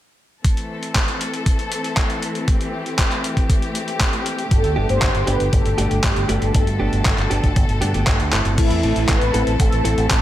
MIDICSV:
0, 0, Header, 1, 6, 480
1, 0, Start_track
1, 0, Key_signature, 0, "minor"
1, 0, Tempo, 508475
1, 421, Time_signature, 4, 2, 24, 8
1, 9645, End_track
2, 0, Start_track
2, 0, Title_t, "Analog polysynth"
2, 0, Program_c, 0, 90
2, 4262, Note_on_c, 0, 69, 110
2, 4621, Note_on_c, 0, 72, 107
2, 4632, Note_off_c, 0, 69, 0
2, 4981, Note_on_c, 0, 71, 102
2, 4992, Note_off_c, 0, 72, 0
2, 5204, Note_off_c, 0, 71, 0
2, 5220, Note_on_c, 0, 69, 96
2, 5699, Note_on_c, 0, 67, 89
2, 5715, Note_off_c, 0, 69, 0
2, 5940, Note_on_c, 0, 69, 85
2, 5947, Note_off_c, 0, 67, 0
2, 6622, Note_off_c, 0, 69, 0
2, 8098, Note_on_c, 0, 64, 110
2, 8579, Note_on_c, 0, 71, 102
2, 8594, Note_off_c, 0, 64, 0
2, 9026, Note_off_c, 0, 71, 0
2, 9061, Note_on_c, 0, 69, 101
2, 9530, Note_off_c, 0, 69, 0
2, 9542, Note_on_c, 0, 69, 99
2, 9645, Note_off_c, 0, 69, 0
2, 9645, End_track
3, 0, Start_track
3, 0, Title_t, "Clean electric guitar"
3, 0, Program_c, 1, 27
3, 4495, Note_on_c, 1, 67, 83
3, 4501, Note_on_c, 1, 59, 63
3, 4505, Note_on_c, 1, 62, 72
3, 4508, Note_on_c, 1, 57, 64
3, 4512, Note_on_c, 1, 43, 67
3, 4805, Note_off_c, 1, 43, 0
3, 4805, Note_off_c, 1, 67, 0
3, 4806, Note_off_c, 1, 57, 0
3, 4806, Note_off_c, 1, 59, 0
3, 4806, Note_off_c, 1, 62, 0
3, 4976, Note_on_c, 1, 67, 89
3, 4980, Note_on_c, 1, 59, 70
3, 4985, Note_on_c, 1, 62, 67
3, 4990, Note_on_c, 1, 57, 70
3, 4995, Note_on_c, 1, 43, 78
3, 5171, Note_off_c, 1, 43, 0
3, 5171, Note_off_c, 1, 62, 0
3, 5171, Note_off_c, 1, 67, 0
3, 5172, Note_off_c, 1, 57, 0
3, 5172, Note_off_c, 1, 59, 0
3, 5455, Note_on_c, 1, 67, 96
3, 5459, Note_on_c, 1, 59, 75
3, 5465, Note_on_c, 1, 62, 70
3, 5468, Note_on_c, 1, 57, 69
3, 5472, Note_on_c, 1, 43, 75
3, 5651, Note_off_c, 1, 43, 0
3, 5651, Note_off_c, 1, 57, 0
3, 5651, Note_off_c, 1, 59, 0
3, 5651, Note_off_c, 1, 62, 0
3, 5651, Note_off_c, 1, 67, 0
3, 5935, Note_on_c, 1, 67, 92
3, 5939, Note_on_c, 1, 59, 74
3, 5943, Note_on_c, 1, 62, 68
3, 5946, Note_on_c, 1, 57, 72
3, 5950, Note_on_c, 1, 43, 76
3, 6245, Note_off_c, 1, 43, 0
3, 6245, Note_off_c, 1, 57, 0
3, 6245, Note_off_c, 1, 59, 0
3, 6245, Note_off_c, 1, 62, 0
3, 6245, Note_off_c, 1, 67, 0
3, 6415, Note_on_c, 1, 67, 87
3, 6418, Note_on_c, 1, 59, 71
3, 6422, Note_on_c, 1, 62, 68
3, 6426, Note_on_c, 1, 57, 65
3, 6430, Note_on_c, 1, 43, 68
3, 6725, Note_off_c, 1, 43, 0
3, 6725, Note_off_c, 1, 57, 0
3, 6725, Note_off_c, 1, 59, 0
3, 6725, Note_off_c, 1, 62, 0
3, 6725, Note_off_c, 1, 67, 0
3, 6893, Note_on_c, 1, 67, 90
3, 6898, Note_on_c, 1, 59, 69
3, 6903, Note_on_c, 1, 62, 65
3, 6909, Note_on_c, 1, 57, 69
3, 6913, Note_on_c, 1, 43, 81
3, 7091, Note_off_c, 1, 43, 0
3, 7091, Note_off_c, 1, 57, 0
3, 7091, Note_off_c, 1, 59, 0
3, 7091, Note_off_c, 1, 62, 0
3, 7091, Note_off_c, 1, 67, 0
3, 7374, Note_on_c, 1, 67, 82
3, 7378, Note_on_c, 1, 59, 74
3, 7382, Note_on_c, 1, 62, 75
3, 7386, Note_on_c, 1, 57, 69
3, 7390, Note_on_c, 1, 43, 75
3, 7482, Note_off_c, 1, 43, 0
3, 7482, Note_off_c, 1, 57, 0
3, 7482, Note_off_c, 1, 59, 0
3, 7482, Note_off_c, 1, 62, 0
3, 7482, Note_off_c, 1, 67, 0
3, 7493, Note_on_c, 1, 67, 83
3, 7497, Note_on_c, 1, 59, 67
3, 7504, Note_on_c, 1, 62, 68
3, 7507, Note_on_c, 1, 57, 55
3, 7513, Note_on_c, 1, 43, 67
3, 7831, Note_off_c, 1, 43, 0
3, 7831, Note_off_c, 1, 57, 0
3, 7831, Note_off_c, 1, 59, 0
3, 7831, Note_off_c, 1, 62, 0
3, 7831, Note_off_c, 1, 67, 0
3, 7854, Note_on_c, 1, 69, 96
3, 7858, Note_on_c, 1, 64, 85
3, 7864, Note_on_c, 1, 60, 75
3, 7869, Note_on_c, 1, 57, 82
3, 7875, Note_on_c, 1, 45, 80
3, 8311, Note_off_c, 1, 45, 0
3, 8311, Note_off_c, 1, 57, 0
3, 8311, Note_off_c, 1, 60, 0
3, 8311, Note_off_c, 1, 64, 0
3, 8311, Note_off_c, 1, 69, 0
3, 8335, Note_on_c, 1, 69, 97
3, 8340, Note_on_c, 1, 64, 68
3, 8343, Note_on_c, 1, 60, 70
3, 8348, Note_on_c, 1, 57, 69
3, 8351, Note_on_c, 1, 45, 73
3, 8645, Note_off_c, 1, 45, 0
3, 8645, Note_off_c, 1, 57, 0
3, 8645, Note_off_c, 1, 60, 0
3, 8645, Note_off_c, 1, 64, 0
3, 8645, Note_off_c, 1, 69, 0
3, 8813, Note_on_c, 1, 69, 92
3, 8819, Note_on_c, 1, 64, 77
3, 8825, Note_on_c, 1, 60, 76
3, 8830, Note_on_c, 1, 57, 65
3, 8834, Note_on_c, 1, 45, 69
3, 9011, Note_off_c, 1, 45, 0
3, 9011, Note_off_c, 1, 57, 0
3, 9011, Note_off_c, 1, 60, 0
3, 9011, Note_off_c, 1, 64, 0
3, 9011, Note_off_c, 1, 69, 0
3, 9294, Note_on_c, 1, 69, 88
3, 9298, Note_on_c, 1, 64, 75
3, 9305, Note_on_c, 1, 60, 73
3, 9308, Note_on_c, 1, 57, 70
3, 9312, Note_on_c, 1, 45, 77
3, 9491, Note_off_c, 1, 45, 0
3, 9491, Note_off_c, 1, 57, 0
3, 9491, Note_off_c, 1, 60, 0
3, 9491, Note_off_c, 1, 64, 0
3, 9491, Note_off_c, 1, 69, 0
3, 9645, End_track
4, 0, Start_track
4, 0, Title_t, "String section"
4, 0, Program_c, 2, 48
4, 423, Note_on_c, 2, 52, 71
4, 423, Note_on_c, 2, 57, 67
4, 423, Note_on_c, 2, 60, 65
4, 423, Note_on_c, 2, 69, 80
4, 2323, Note_off_c, 2, 69, 0
4, 2340, Note_on_c, 2, 67, 82
4, 4224, Note_off_c, 2, 52, 0
4, 4224, Note_off_c, 2, 60, 0
4, 4261, Note_on_c, 2, 50, 74
4, 4262, Note_on_c, 2, 47, 71
4, 6142, Note_off_c, 2, 67, 0
4, 6179, Note_on_c, 2, 69, 85
4, 8063, Note_off_c, 2, 47, 0
4, 8063, Note_off_c, 2, 50, 0
4, 8064, Note_off_c, 2, 57, 0
4, 8081, Note_off_c, 2, 69, 0
4, 8100, Note_on_c, 2, 52, 76
4, 8100, Note_on_c, 2, 57, 69
4, 8100, Note_on_c, 2, 60, 74
4, 8100, Note_on_c, 2, 69, 84
4, 9645, Note_off_c, 2, 52, 0
4, 9645, Note_off_c, 2, 57, 0
4, 9645, Note_off_c, 2, 60, 0
4, 9645, Note_off_c, 2, 69, 0
4, 9645, End_track
5, 0, Start_track
5, 0, Title_t, "Fingered electric bass"
5, 0, Program_c, 3, 33
5, 4261, Note_on_c, 3, 31, 94
5, 4361, Note_off_c, 3, 31, 0
5, 4380, Note_on_c, 3, 38, 72
5, 4481, Note_off_c, 3, 38, 0
5, 4500, Note_on_c, 3, 31, 90
5, 4601, Note_off_c, 3, 31, 0
5, 4621, Note_on_c, 3, 31, 76
5, 4722, Note_off_c, 3, 31, 0
5, 4740, Note_on_c, 3, 31, 89
5, 4841, Note_off_c, 3, 31, 0
5, 4861, Note_on_c, 3, 31, 72
5, 4962, Note_off_c, 3, 31, 0
5, 4981, Note_on_c, 3, 31, 91
5, 5081, Note_off_c, 3, 31, 0
5, 5100, Note_on_c, 3, 31, 71
5, 5201, Note_off_c, 3, 31, 0
5, 5220, Note_on_c, 3, 31, 94
5, 5321, Note_off_c, 3, 31, 0
5, 5339, Note_on_c, 3, 31, 77
5, 5441, Note_off_c, 3, 31, 0
5, 5460, Note_on_c, 3, 31, 82
5, 5561, Note_off_c, 3, 31, 0
5, 5581, Note_on_c, 3, 31, 76
5, 5681, Note_off_c, 3, 31, 0
5, 5700, Note_on_c, 3, 31, 91
5, 5801, Note_off_c, 3, 31, 0
5, 5820, Note_on_c, 3, 31, 74
5, 5921, Note_off_c, 3, 31, 0
5, 5939, Note_on_c, 3, 31, 84
5, 6041, Note_off_c, 3, 31, 0
5, 6060, Note_on_c, 3, 31, 77
5, 6161, Note_off_c, 3, 31, 0
5, 6180, Note_on_c, 3, 31, 94
5, 6281, Note_off_c, 3, 31, 0
5, 6299, Note_on_c, 3, 43, 75
5, 6400, Note_off_c, 3, 43, 0
5, 6419, Note_on_c, 3, 31, 90
5, 6521, Note_off_c, 3, 31, 0
5, 6539, Note_on_c, 3, 31, 77
5, 6641, Note_off_c, 3, 31, 0
5, 6660, Note_on_c, 3, 31, 88
5, 6761, Note_off_c, 3, 31, 0
5, 6779, Note_on_c, 3, 31, 73
5, 6881, Note_off_c, 3, 31, 0
5, 6899, Note_on_c, 3, 31, 87
5, 7000, Note_off_c, 3, 31, 0
5, 7020, Note_on_c, 3, 31, 75
5, 7121, Note_off_c, 3, 31, 0
5, 7140, Note_on_c, 3, 31, 98
5, 7241, Note_off_c, 3, 31, 0
5, 7259, Note_on_c, 3, 31, 79
5, 7360, Note_off_c, 3, 31, 0
5, 7379, Note_on_c, 3, 43, 85
5, 7481, Note_off_c, 3, 43, 0
5, 7499, Note_on_c, 3, 31, 78
5, 7601, Note_off_c, 3, 31, 0
5, 7620, Note_on_c, 3, 31, 96
5, 7721, Note_off_c, 3, 31, 0
5, 7739, Note_on_c, 3, 38, 74
5, 7841, Note_off_c, 3, 38, 0
5, 7860, Note_on_c, 3, 31, 90
5, 7961, Note_off_c, 3, 31, 0
5, 7979, Note_on_c, 3, 31, 75
5, 8080, Note_off_c, 3, 31, 0
5, 8100, Note_on_c, 3, 33, 99
5, 8201, Note_off_c, 3, 33, 0
5, 8220, Note_on_c, 3, 40, 77
5, 8321, Note_off_c, 3, 40, 0
5, 8340, Note_on_c, 3, 33, 89
5, 8441, Note_off_c, 3, 33, 0
5, 8460, Note_on_c, 3, 33, 72
5, 8561, Note_off_c, 3, 33, 0
5, 8580, Note_on_c, 3, 33, 94
5, 8681, Note_off_c, 3, 33, 0
5, 8699, Note_on_c, 3, 33, 72
5, 8801, Note_off_c, 3, 33, 0
5, 8819, Note_on_c, 3, 33, 90
5, 8921, Note_off_c, 3, 33, 0
5, 8939, Note_on_c, 3, 33, 76
5, 9041, Note_off_c, 3, 33, 0
5, 9060, Note_on_c, 3, 33, 100
5, 9161, Note_off_c, 3, 33, 0
5, 9179, Note_on_c, 3, 33, 77
5, 9281, Note_off_c, 3, 33, 0
5, 9299, Note_on_c, 3, 33, 85
5, 9401, Note_off_c, 3, 33, 0
5, 9420, Note_on_c, 3, 33, 80
5, 9521, Note_off_c, 3, 33, 0
5, 9540, Note_on_c, 3, 33, 93
5, 9641, Note_off_c, 3, 33, 0
5, 9645, End_track
6, 0, Start_track
6, 0, Title_t, "Drums"
6, 420, Note_on_c, 9, 42, 86
6, 421, Note_on_c, 9, 36, 106
6, 514, Note_off_c, 9, 42, 0
6, 515, Note_off_c, 9, 36, 0
6, 540, Note_on_c, 9, 42, 40
6, 634, Note_off_c, 9, 42, 0
6, 780, Note_on_c, 9, 42, 38
6, 875, Note_off_c, 9, 42, 0
6, 900, Note_on_c, 9, 36, 109
6, 900, Note_on_c, 9, 39, 110
6, 900, Note_on_c, 9, 42, 91
6, 995, Note_off_c, 9, 36, 0
6, 995, Note_off_c, 9, 39, 0
6, 995, Note_off_c, 9, 42, 0
6, 1021, Note_on_c, 9, 42, 36
6, 1115, Note_off_c, 9, 42, 0
6, 1140, Note_on_c, 9, 42, 66
6, 1235, Note_off_c, 9, 42, 0
6, 1261, Note_on_c, 9, 42, 38
6, 1355, Note_off_c, 9, 42, 0
6, 1380, Note_on_c, 9, 42, 86
6, 1381, Note_on_c, 9, 36, 108
6, 1475, Note_off_c, 9, 36, 0
6, 1475, Note_off_c, 9, 42, 0
6, 1501, Note_on_c, 9, 42, 39
6, 1595, Note_off_c, 9, 42, 0
6, 1620, Note_on_c, 9, 42, 68
6, 1714, Note_off_c, 9, 42, 0
6, 1741, Note_on_c, 9, 42, 38
6, 1835, Note_off_c, 9, 42, 0
6, 1860, Note_on_c, 9, 39, 102
6, 1860, Note_on_c, 9, 42, 87
6, 1861, Note_on_c, 9, 36, 111
6, 1955, Note_off_c, 9, 36, 0
6, 1955, Note_off_c, 9, 39, 0
6, 1955, Note_off_c, 9, 42, 0
6, 1981, Note_on_c, 9, 42, 38
6, 2075, Note_off_c, 9, 42, 0
6, 2100, Note_on_c, 9, 42, 65
6, 2194, Note_off_c, 9, 42, 0
6, 2220, Note_on_c, 9, 42, 38
6, 2315, Note_off_c, 9, 42, 0
6, 2339, Note_on_c, 9, 42, 88
6, 2340, Note_on_c, 9, 36, 119
6, 2434, Note_off_c, 9, 42, 0
6, 2435, Note_off_c, 9, 36, 0
6, 2461, Note_on_c, 9, 42, 38
6, 2555, Note_off_c, 9, 42, 0
6, 2700, Note_on_c, 9, 42, 37
6, 2795, Note_off_c, 9, 42, 0
6, 2820, Note_on_c, 9, 36, 116
6, 2820, Note_on_c, 9, 39, 118
6, 2820, Note_on_c, 9, 42, 90
6, 2914, Note_off_c, 9, 39, 0
6, 2914, Note_off_c, 9, 42, 0
6, 2915, Note_off_c, 9, 36, 0
6, 2941, Note_on_c, 9, 39, 36
6, 2941, Note_on_c, 9, 42, 36
6, 3035, Note_off_c, 9, 39, 0
6, 3035, Note_off_c, 9, 42, 0
6, 3060, Note_on_c, 9, 42, 61
6, 3155, Note_off_c, 9, 42, 0
6, 3180, Note_on_c, 9, 36, 60
6, 3181, Note_on_c, 9, 42, 39
6, 3275, Note_off_c, 9, 36, 0
6, 3275, Note_off_c, 9, 42, 0
6, 3300, Note_on_c, 9, 36, 111
6, 3300, Note_on_c, 9, 42, 88
6, 3395, Note_off_c, 9, 36, 0
6, 3395, Note_off_c, 9, 42, 0
6, 3421, Note_on_c, 9, 42, 37
6, 3515, Note_off_c, 9, 42, 0
6, 3540, Note_on_c, 9, 42, 66
6, 3635, Note_off_c, 9, 42, 0
6, 3661, Note_on_c, 9, 42, 38
6, 3755, Note_off_c, 9, 42, 0
6, 3780, Note_on_c, 9, 36, 114
6, 3780, Note_on_c, 9, 39, 111
6, 3780, Note_on_c, 9, 42, 85
6, 3875, Note_off_c, 9, 36, 0
6, 3875, Note_off_c, 9, 39, 0
6, 3875, Note_off_c, 9, 42, 0
6, 3900, Note_on_c, 9, 42, 37
6, 3995, Note_off_c, 9, 42, 0
6, 4020, Note_on_c, 9, 42, 65
6, 4114, Note_off_c, 9, 42, 0
6, 4140, Note_on_c, 9, 42, 37
6, 4234, Note_off_c, 9, 42, 0
6, 4260, Note_on_c, 9, 36, 117
6, 4260, Note_on_c, 9, 42, 81
6, 4354, Note_off_c, 9, 42, 0
6, 4355, Note_off_c, 9, 36, 0
6, 4379, Note_on_c, 9, 42, 37
6, 4474, Note_off_c, 9, 42, 0
6, 4619, Note_on_c, 9, 42, 36
6, 4714, Note_off_c, 9, 42, 0
6, 4739, Note_on_c, 9, 39, 123
6, 4739, Note_on_c, 9, 42, 85
6, 4740, Note_on_c, 9, 36, 111
6, 4833, Note_off_c, 9, 39, 0
6, 4833, Note_off_c, 9, 42, 0
6, 4835, Note_off_c, 9, 36, 0
6, 4859, Note_on_c, 9, 42, 35
6, 4953, Note_off_c, 9, 42, 0
6, 4978, Note_on_c, 9, 42, 64
6, 5073, Note_off_c, 9, 42, 0
6, 5099, Note_on_c, 9, 42, 38
6, 5193, Note_off_c, 9, 42, 0
6, 5218, Note_on_c, 9, 42, 78
6, 5220, Note_on_c, 9, 36, 112
6, 5313, Note_off_c, 9, 42, 0
6, 5315, Note_off_c, 9, 36, 0
6, 5339, Note_on_c, 9, 42, 37
6, 5433, Note_off_c, 9, 42, 0
6, 5459, Note_on_c, 9, 42, 62
6, 5553, Note_off_c, 9, 42, 0
6, 5579, Note_on_c, 9, 42, 35
6, 5673, Note_off_c, 9, 42, 0
6, 5699, Note_on_c, 9, 39, 112
6, 5699, Note_on_c, 9, 42, 78
6, 5700, Note_on_c, 9, 36, 117
6, 5793, Note_off_c, 9, 39, 0
6, 5793, Note_off_c, 9, 42, 0
6, 5795, Note_off_c, 9, 36, 0
6, 5819, Note_on_c, 9, 42, 38
6, 5913, Note_off_c, 9, 42, 0
6, 5939, Note_on_c, 9, 42, 61
6, 6033, Note_off_c, 9, 42, 0
6, 6059, Note_on_c, 9, 42, 35
6, 6153, Note_off_c, 9, 42, 0
6, 6178, Note_on_c, 9, 42, 84
6, 6180, Note_on_c, 9, 36, 120
6, 6273, Note_off_c, 9, 42, 0
6, 6275, Note_off_c, 9, 36, 0
6, 6299, Note_on_c, 9, 42, 36
6, 6393, Note_off_c, 9, 42, 0
6, 6540, Note_on_c, 9, 42, 36
6, 6634, Note_off_c, 9, 42, 0
6, 6660, Note_on_c, 9, 36, 116
6, 6660, Note_on_c, 9, 39, 117
6, 6660, Note_on_c, 9, 42, 81
6, 6754, Note_off_c, 9, 36, 0
6, 6754, Note_off_c, 9, 39, 0
6, 6754, Note_off_c, 9, 42, 0
6, 6780, Note_on_c, 9, 39, 37
6, 6780, Note_on_c, 9, 42, 36
6, 6874, Note_off_c, 9, 39, 0
6, 6874, Note_off_c, 9, 42, 0
6, 6900, Note_on_c, 9, 42, 60
6, 6994, Note_off_c, 9, 42, 0
6, 7019, Note_on_c, 9, 42, 37
6, 7020, Note_on_c, 9, 36, 58
6, 7114, Note_off_c, 9, 36, 0
6, 7114, Note_off_c, 9, 42, 0
6, 7138, Note_on_c, 9, 42, 80
6, 7140, Note_on_c, 9, 36, 112
6, 7232, Note_off_c, 9, 42, 0
6, 7234, Note_off_c, 9, 36, 0
6, 7259, Note_on_c, 9, 42, 36
6, 7353, Note_off_c, 9, 42, 0
6, 7379, Note_on_c, 9, 42, 61
6, 7473, Note_off_c, 9, 42, 0
6, 7499, Note_on_c, 9, 42, 34
6, 7593, Note_off_c, 9, 42, 0
6, 7618, Note_on_c, 9, 39, 117
6, 7618, Note_on_c, 9, 42, 83
6, 7620, Note_on_c, 9, 36, 122
6, 7713, Note_off_c, 9, 39, 0
6, 7713, Note_off_c, 9, 42, 0
6, 7714, Note_off_c, 9, 36, 0
6, 7739, Note_on_c, 9, 42, 37
6, 7833, Note_off_c, 9, 42, 0
6, 7858, Note_on_c, 9, 39, 91
6, 7858, Note_on_c, 9, 42, 59
6, 7953, Note_off_c, 9, 39, 0
6, 7953, Note_off_c, 9, 42, 0
6, 7978, Note_on_c, 9, 42, 36
6, 8073, Note_off_c, 9, 42, 0
6, 8098, Note_on_c, 9, 42, 91
6, 8098, Note_on_c, 9, 49, 88
6, 8100, Note_on_c, 9, 36, 115
6, 8193, Note_off_c, 9, 42, 0
6, 8193, Note_off_c, 9, 49, 0
6, 8195, Note_off_c, 9, 36, 0
6, 8218, Note_on_c, 9, 42, 40
6, 8312, Note_off_c, 9, 42, 0
6, 8338, Note_on_c, 9, 42, 39
6, 8433, Note_off_c, 9, 42, 0
6, 8458, Note_on_c, 9, 42, 39
6, 8553, Note_off_c, 9, 42, 0
6, 8578, Note_on_c, 9, 39, 114
6, 8578, Note_on_c, 9, 42, 97
6, 8580, Note_on_c, 9, 36, 119
6, 8673, Note_off_c, 9, 39, 0
6, 8673, Note_off_c, 9, 42, 0
6, 8675, Note_off_c, 9, 36, 0
6, 8698, Note_on_c, 9, 42, 40
6, 8793, Note_off_c, 9, 42, 0
6, 8818, Note_on_c, 9, 42, 66
6, 8913, Note_off_c, 9, 42, 0
6, 8939, Note_on_c, 9, 42, 40
6, 9034, Note_off_c, 9, 42, 0
6, 9059, Note_on_c, 9, 42, 95
6, 9060, Note_on_c, 9, 36, 118
6, 9154, Note_off_c, 9, 42, 0
6, 9155, Note_off_c, 9, 36, 0
6, 9180, Note_on_c, 9, 42, 42
6, 9274, Note_off_c, 9, 42, 0
6, 9299, Note_on_c, 9, 42, 72
6, 9394, Note_off_c, 9, 42, 0
6, 9419, Note_on_c, 9, 42, 41
6, 9513, Note_off_c, 9, 42, 0
6, 9539, Note_on_c, 9, 39, 110
6, 9539, Note_on_c, 9, 42, 89
6, 9540, Note_on_c, 9, 36, 111
6, 9633, Note_off_c, 9, 39, 0
6, 9633, Note_off_c, 9, 42, 0
6, 9635, Note_off_c, 9, 36, 0
6, 9645, End_track
0, 0, End_of_file